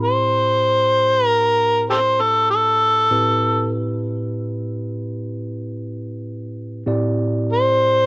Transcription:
Already playing: tine electric piano A2 C4 E4 G4 B5
0.02 harmonica C5
1.27 harmonica A#4
1.90 harmonica G4 A4 C5
2.21 harmonica A4
2.51 harmonica A4
3.11 tine electric piano A2 C4 E4 G4 B4
6.86 tine electric piano A2 C4 E4 G4 D5
7.53 harmonica C5

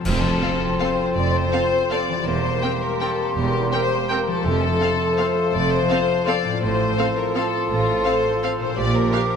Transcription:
Already playing: harp F3 C4 F4
0.01 timpani F2, harp A4, flute C6
0.05 double bass section F1, cello section F2, bassoon C4, french horn section C4 A4, clarinet F4, violin section G4, concert bass drum, crash
0.22 violin section A4
0.42 viola section C4 A4, violin section F5
0.80 viola section C4 A4, violin section C5 F5
1.15 double bass section F1, cello section F2, violin section D5
1.34 violin section C5
1.52 viola section C4 A4, violin section F5
1.90 viola section C4 A4, violin section D5 F5
2.08 harp E3
2.13 harp C4
2.17 harp G4
2.22 harp A#4
2.26 double bass section E1, cello section E2, french horn section G3 A#4, bassoon A#3, clarinet G4, violin section C5, flute C6
2.62 viola section C4 A#4, violin section G5
2.82 violin section A#4
3.01 viola section C4 A#4, violin section A4 G5
3.36 double bass section E1, cello section E2, violin section G4
3.72 viola section C4 A#4, violin section C5 G5
4.09 viola section C4 A#4, violin section A#4 G5
4.27 harp F3, violin section A4
4.32 harp C4
4.36 harp F4
4.41 cello section F2, harp A4
4.45 double bass section F1, timpani F2, french horn section F3 A4, bassoon A3, violin section G4, clarinet A4, flute C6
4.62 violin section A4
4.80 viola section C4 A4, violin section F5
5.18 viola section C4 A4, violin section C5 F5
5.53 double bass section F1, cello section F2, violin section D5
5.71 violin section C5
5.89 viola section C4 A4, violin section F5
6.27 viola section C4 A4, violin section D5 F5
6.45 harp A2
6.49 harp C4
6.54 harp F4
6.58 cello section A2, bassoon F3, harp A4, flute C6
6.62 double bass section A1, french horn section F3 A4, clarinet A4, violin section C5
6.98 viola section C4 A4, violin section F5
7.17 violin section A#4
7.35 viola section C4 A4, violin section A4 F5
7.70 double bass section A1, cello section A2, violin section F4
8.05 viola section C4 A4, violin section C5 F5
8.43 viola section C4 A4, violin section F5
8.60 harp A#2, violin section C5
8.64 harp D4
8.69 harp F4
8.73 french horn section F3 G4, harp G4, clarinet G4
8.77 double bass section A#1, cello section A#2, bassoon F3, violin section D5, flute D6
8.95 violin section A#4
9.13 viola section D4 G4, violin section F5

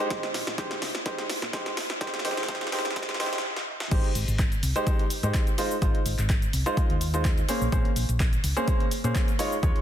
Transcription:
0.10 fingered electric bass A#1, grand piano G#3 G4 C5, kick, snare, closed hi-hat
0.23 snare, closed hi-hat
0.34 fingered electric bass A#1, snare, open hi-hat
0.47 fingered electric bass A#1, snare, closed hi-hat
0.58 grand piano G#3 D#4 G4 C5, kick, snare, closed hi-hat
0.71 snare, closed hi-hat
0.82 fingered electric bass C#2, snare, open hi-hat
0.95 snare, closed hi-hat
1.06 grand piano G#3 D#4 G4 C5, kick, snare, closed hi-hat
1.18 snare, closed hi-hat
1.30 snare, open hi-hat
1.42 fingered electric bass A#2, snare, closed hi-hat
1.53 grand piano G#3 D#4 G4 C5, kick, snare, closed hi-hat
1.66 snare, closed hi-hat
1.77 snare, open hi-hat
1.90 snare, closed hi-hat
2.01 fingered electric bass D#2, grand piano G#3 D#4 G4 C5, kick, snare, closed hi-hat
2.07 snare
2.14 snare, closed hi-hat
2.19 snare
2.25 fingered electric bass D#2, grand piano G#3 D#4 G4 C5, snare, open hi-hat
2.31 snare
2.37 fingered electric bass D#2, snare, closed hi-hat
2.43 snare
2.49 grand piano G#3 D#4 G4 C5, kick, snare, closed hi-hat
2.55 snare
2.61 snare, closed hi-hat
2.67 snare
2.72 fingered electric bass G#2, grand piano G#3 D#4 G4 C5, snare, open hi-hat
2.79 snare
2.85 snare, closed hi-hat
2.91 snare
2.96 grand piano G#3 D#4 G4 C5, kick, snare, closed hi-hat
3.02 snare
3.09 fingered electric bass A#1, snare, closed hi-hat
3.14 snare
3.20 grand piano G#3 D#4 G4 C5, snare, open hi-hat
3.26 snare
3.33 snare, closed hi-hat
3.38 snare
3.57 snare
3.80 snare
3.91 fingered electric bass G#1, grand piano G#3 D#4 G4 C5, kick, closed hi-hat, crash, shaker
4.04 closed hi-hat
4.15 fingered electric bass G#1, open hi-hat, shaker
4.28 fingered electric bass G#1, closed hi-hat, shaker
4.39 kick, clap, closed hi-hat, shaker
4.52 closed hi-hat, shaker
4.63 fingered electric bass C2, open hi-hat, shaker
4.76 grand piano G#3 D#4 G4 C5, closed hi-hat, shaker
4.87 grand piano G#3 D#4 G4 C5, kick, closed hi-hat, shaker
4.99 closed hi-hat
5.10 open hi-hat, shaker
5.23 fingered electric bass G#2, grand piano G#3 D#4 G4 C5, closed hi-hat, shaker
5.34 kick, clap, closed hi-hat, shaker
5.47 closed hi-hat, shaker
5.58 grand piano G#3 D#4 F4 C5, open hi-hat, shaker
5.71 shaker
5.82 fingered electric bass G#1, grand piano G#3 D#4 F4 C5, kick, closed hi-hat, shaker
5.95 closed hi-hat
6.06 fingered electric bass G#1, open hi-hat, shaker
6.18 fingered electric bass G#1, clap, closed hi-hat, shaker
6.30 kick, clap, closed hi-hat, shaker
6.42 closed hi-hat, shaker
6.53 fingered electric bass C2, open hi-hat, shaker
6.66 grand piano G#3 D#4 F4 C5, closed hi-hat, shaker
6.77 grand piano D#4 F4 C5, kick, closed hi-hat, shaker
6.90 fingered electric bass D#2, closed hi-hat
7.01 open hi-hat, shaker
7.14 grand piano G#3 D#4 F4 C5, closed hi-hat, shaker
7.25 kick, clap, closed hi-hat, shaker
7.38 closed hi-hat, shaker
7.49 grand piano A#3 C#4 G#4 C5, open hi-hat, shaker
7.61 fingered electric bass A#1, shaker
7.72 grand piano A#3 C#4 G#4 C5, kick, closed hi-hat, shaker
7.85 closed hi-hat
7.96 fingered electric bass A#1, open hi-hat, shaker
8.09 fingered electric bass A#1, closed hi-hat, shaker
8.20 kick, clap, closed hi-hat, shaker
8.33 closed hi-hat, shaker
8.44 fingered electric bass C#2, open hi-hat, shaker
8.56 grand piano A#3 C#4 G#4 C5, closed hi-hat, shaker
8.68 grand piano A#3 C#4 G#4 C5, kick, closed hi-hat, shaker
8.80 closed hi-hat
8.91 open hi-hat, shaker
9.04 fingered electric bass A#2, grand piano A#3 C#4 G#4 C5, closed hi-hat, shaker
9.15 kick, clap, closed hi-hat, shaker
9.28 closed hi-hat, shaker
9.39 grand piano G#3 D#4 F4 C#5, open hi-hat, shaker
9.52 shaker
9.63 fingered electric bass D#2, grand piano G#3 D#4 F4 C#5, kick, closed hi-hat, shaker
9.76 closed hi-hat

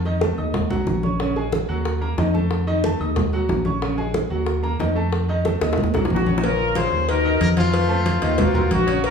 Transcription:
Already playing: fingered electric bass F2
0.05 upright piano D#3 D#4 D#5, high bongo, high conga
0.21 upright piano A3 A4 A5, high bongo, high conga
0.37 fingered electric bass D#2, upright piano D#4 D#5 D#6, high conga
0.54 high bongo, high conga, low conga
0.70 fingered electric bass C2, upright piano F#3 F#4 F#5, high bongo, high conga, low conga
0.87 fingered electric bass A#1, high bongo, low bongo, high conga
1.03 upright piano C#4 C#5 C#6, high bongo, high conga
1.19 upright piano C#3 C#4 C#5, high bongo, high conga
1.36 upright piano G#3 G#4 G#5, high bongo, high conga
1.52 high bongo, high conga
1.68 fingered electric bass D#2, upright piano F#3 F#4 F#5, high conga
1.85 high bongo, high conga
2.01 upright piano A#3 A#4 A#5, high bongo, high conga
2.17 fingered electric bass F2, upright piano D#3 D#4 D#5, high bongo, low bongo, high conga
2.34 upright piano A3 A4 A5, high bongo, high conga
2.51 high bongo, high conga
2.67 upright piano D#3 D#4 D#5, high bongo, high conga
2.84 upright piano A3 A4 A5, high bongo, high conga
3.00 fingered electric bass D#2, upright piano D#4 D#5 D#6, high conga
3.16 high bongo, high conga, low conga
3.33 upright piano F#3 F#4 F#5, high bongo, high conga
3.49 fingered electric bass A#1, high bongo, low bongo, high conga
3.65 upright piano C#4 C#5 C#6, high bongo, high conga
3.82 upright piano C#3 C#4 C#5, high bongo, high conga
3.98 upright piano G#3 G#4 G#5, high bongo, high conga
4.14 high bongo, high conga
4.30 fingered electric bass D#2, upright piano F#3 F#4 F#5, high conga
4.46 high bongo, high conga
4.63 upright piano A#3 A#4 A#5, high bongo, high conga
4.80 fingered electric bass F2, upright piano D#3 D#4 D#5, high bongo, low bongo, high conga
4.95 upright piano A3 A4 A5, high bongo
5.12 high bongo, high conga
5.29 upright piano D#3 D#4 D#5, high bongo, high conga
5.45 upright piano A3 A4 A5, high bongo, high conga
5.61 fingered electric bass D#2, upright piano D#4 D#5 D#6, high bongo
5.73 high bongo
5.78 high conga, low conga
5.84 low bongo
5.94 fingered electric bass C2, upright piano F#3 F#4 F#5, high bongo, high conga, low conga
6.05 low bongo
6.10 fingered electric bass A#1, horn section A#3 D#4 F#4, high conga
6.16 low bongo
6.26 upright piano C#4 C#5 C#6, high conga
6.38 low bongo
6.43 upright piano C#3 C#4 C#5, horn section C#4 F4 A#4, cowbell, high conga
6.59 high conga
6.75 upright piano F3 F4 G#4, horn section F4 G#4 C5, cowbell, high conga
6.91 fingered electric bass D#2, high conga
7.08 upright piano D#3 D#4 D#5, horn section D#4 F#4 A#4, cowbell, high conga
7.24 upright piano D#3 D#4 D#5, high conga
7.40 fingered electric bass F2, horn section A#4, cowbell, high conga
7.57 upright piano F3 F4 F5, horn section A3 C4 F4, cowbell, high conga
7.74 cowbell, high conga
7.89 upright piano A3 A4 C5, high conga
8.06 cowbell, high conga
8.22 fingered electric bass D#2, upright piano D#3 D#4 D#5, cowbell, high conga
8.38 upright piano F#3 F#4 A#4, cowbell, high conga, low conga
8.54 upright piano F#3 F#4 A#4, high conga, low conga
8.71 fingered electric bass A#1, horn section A#3 D#4 F#4, cowbell, high conga
8.87 upright piano C#3 C#4 C#5, cowbell
9.04 upright piano C#3 C#4 C#5, horn section C#4 F4 A#4, cowbell, high conga

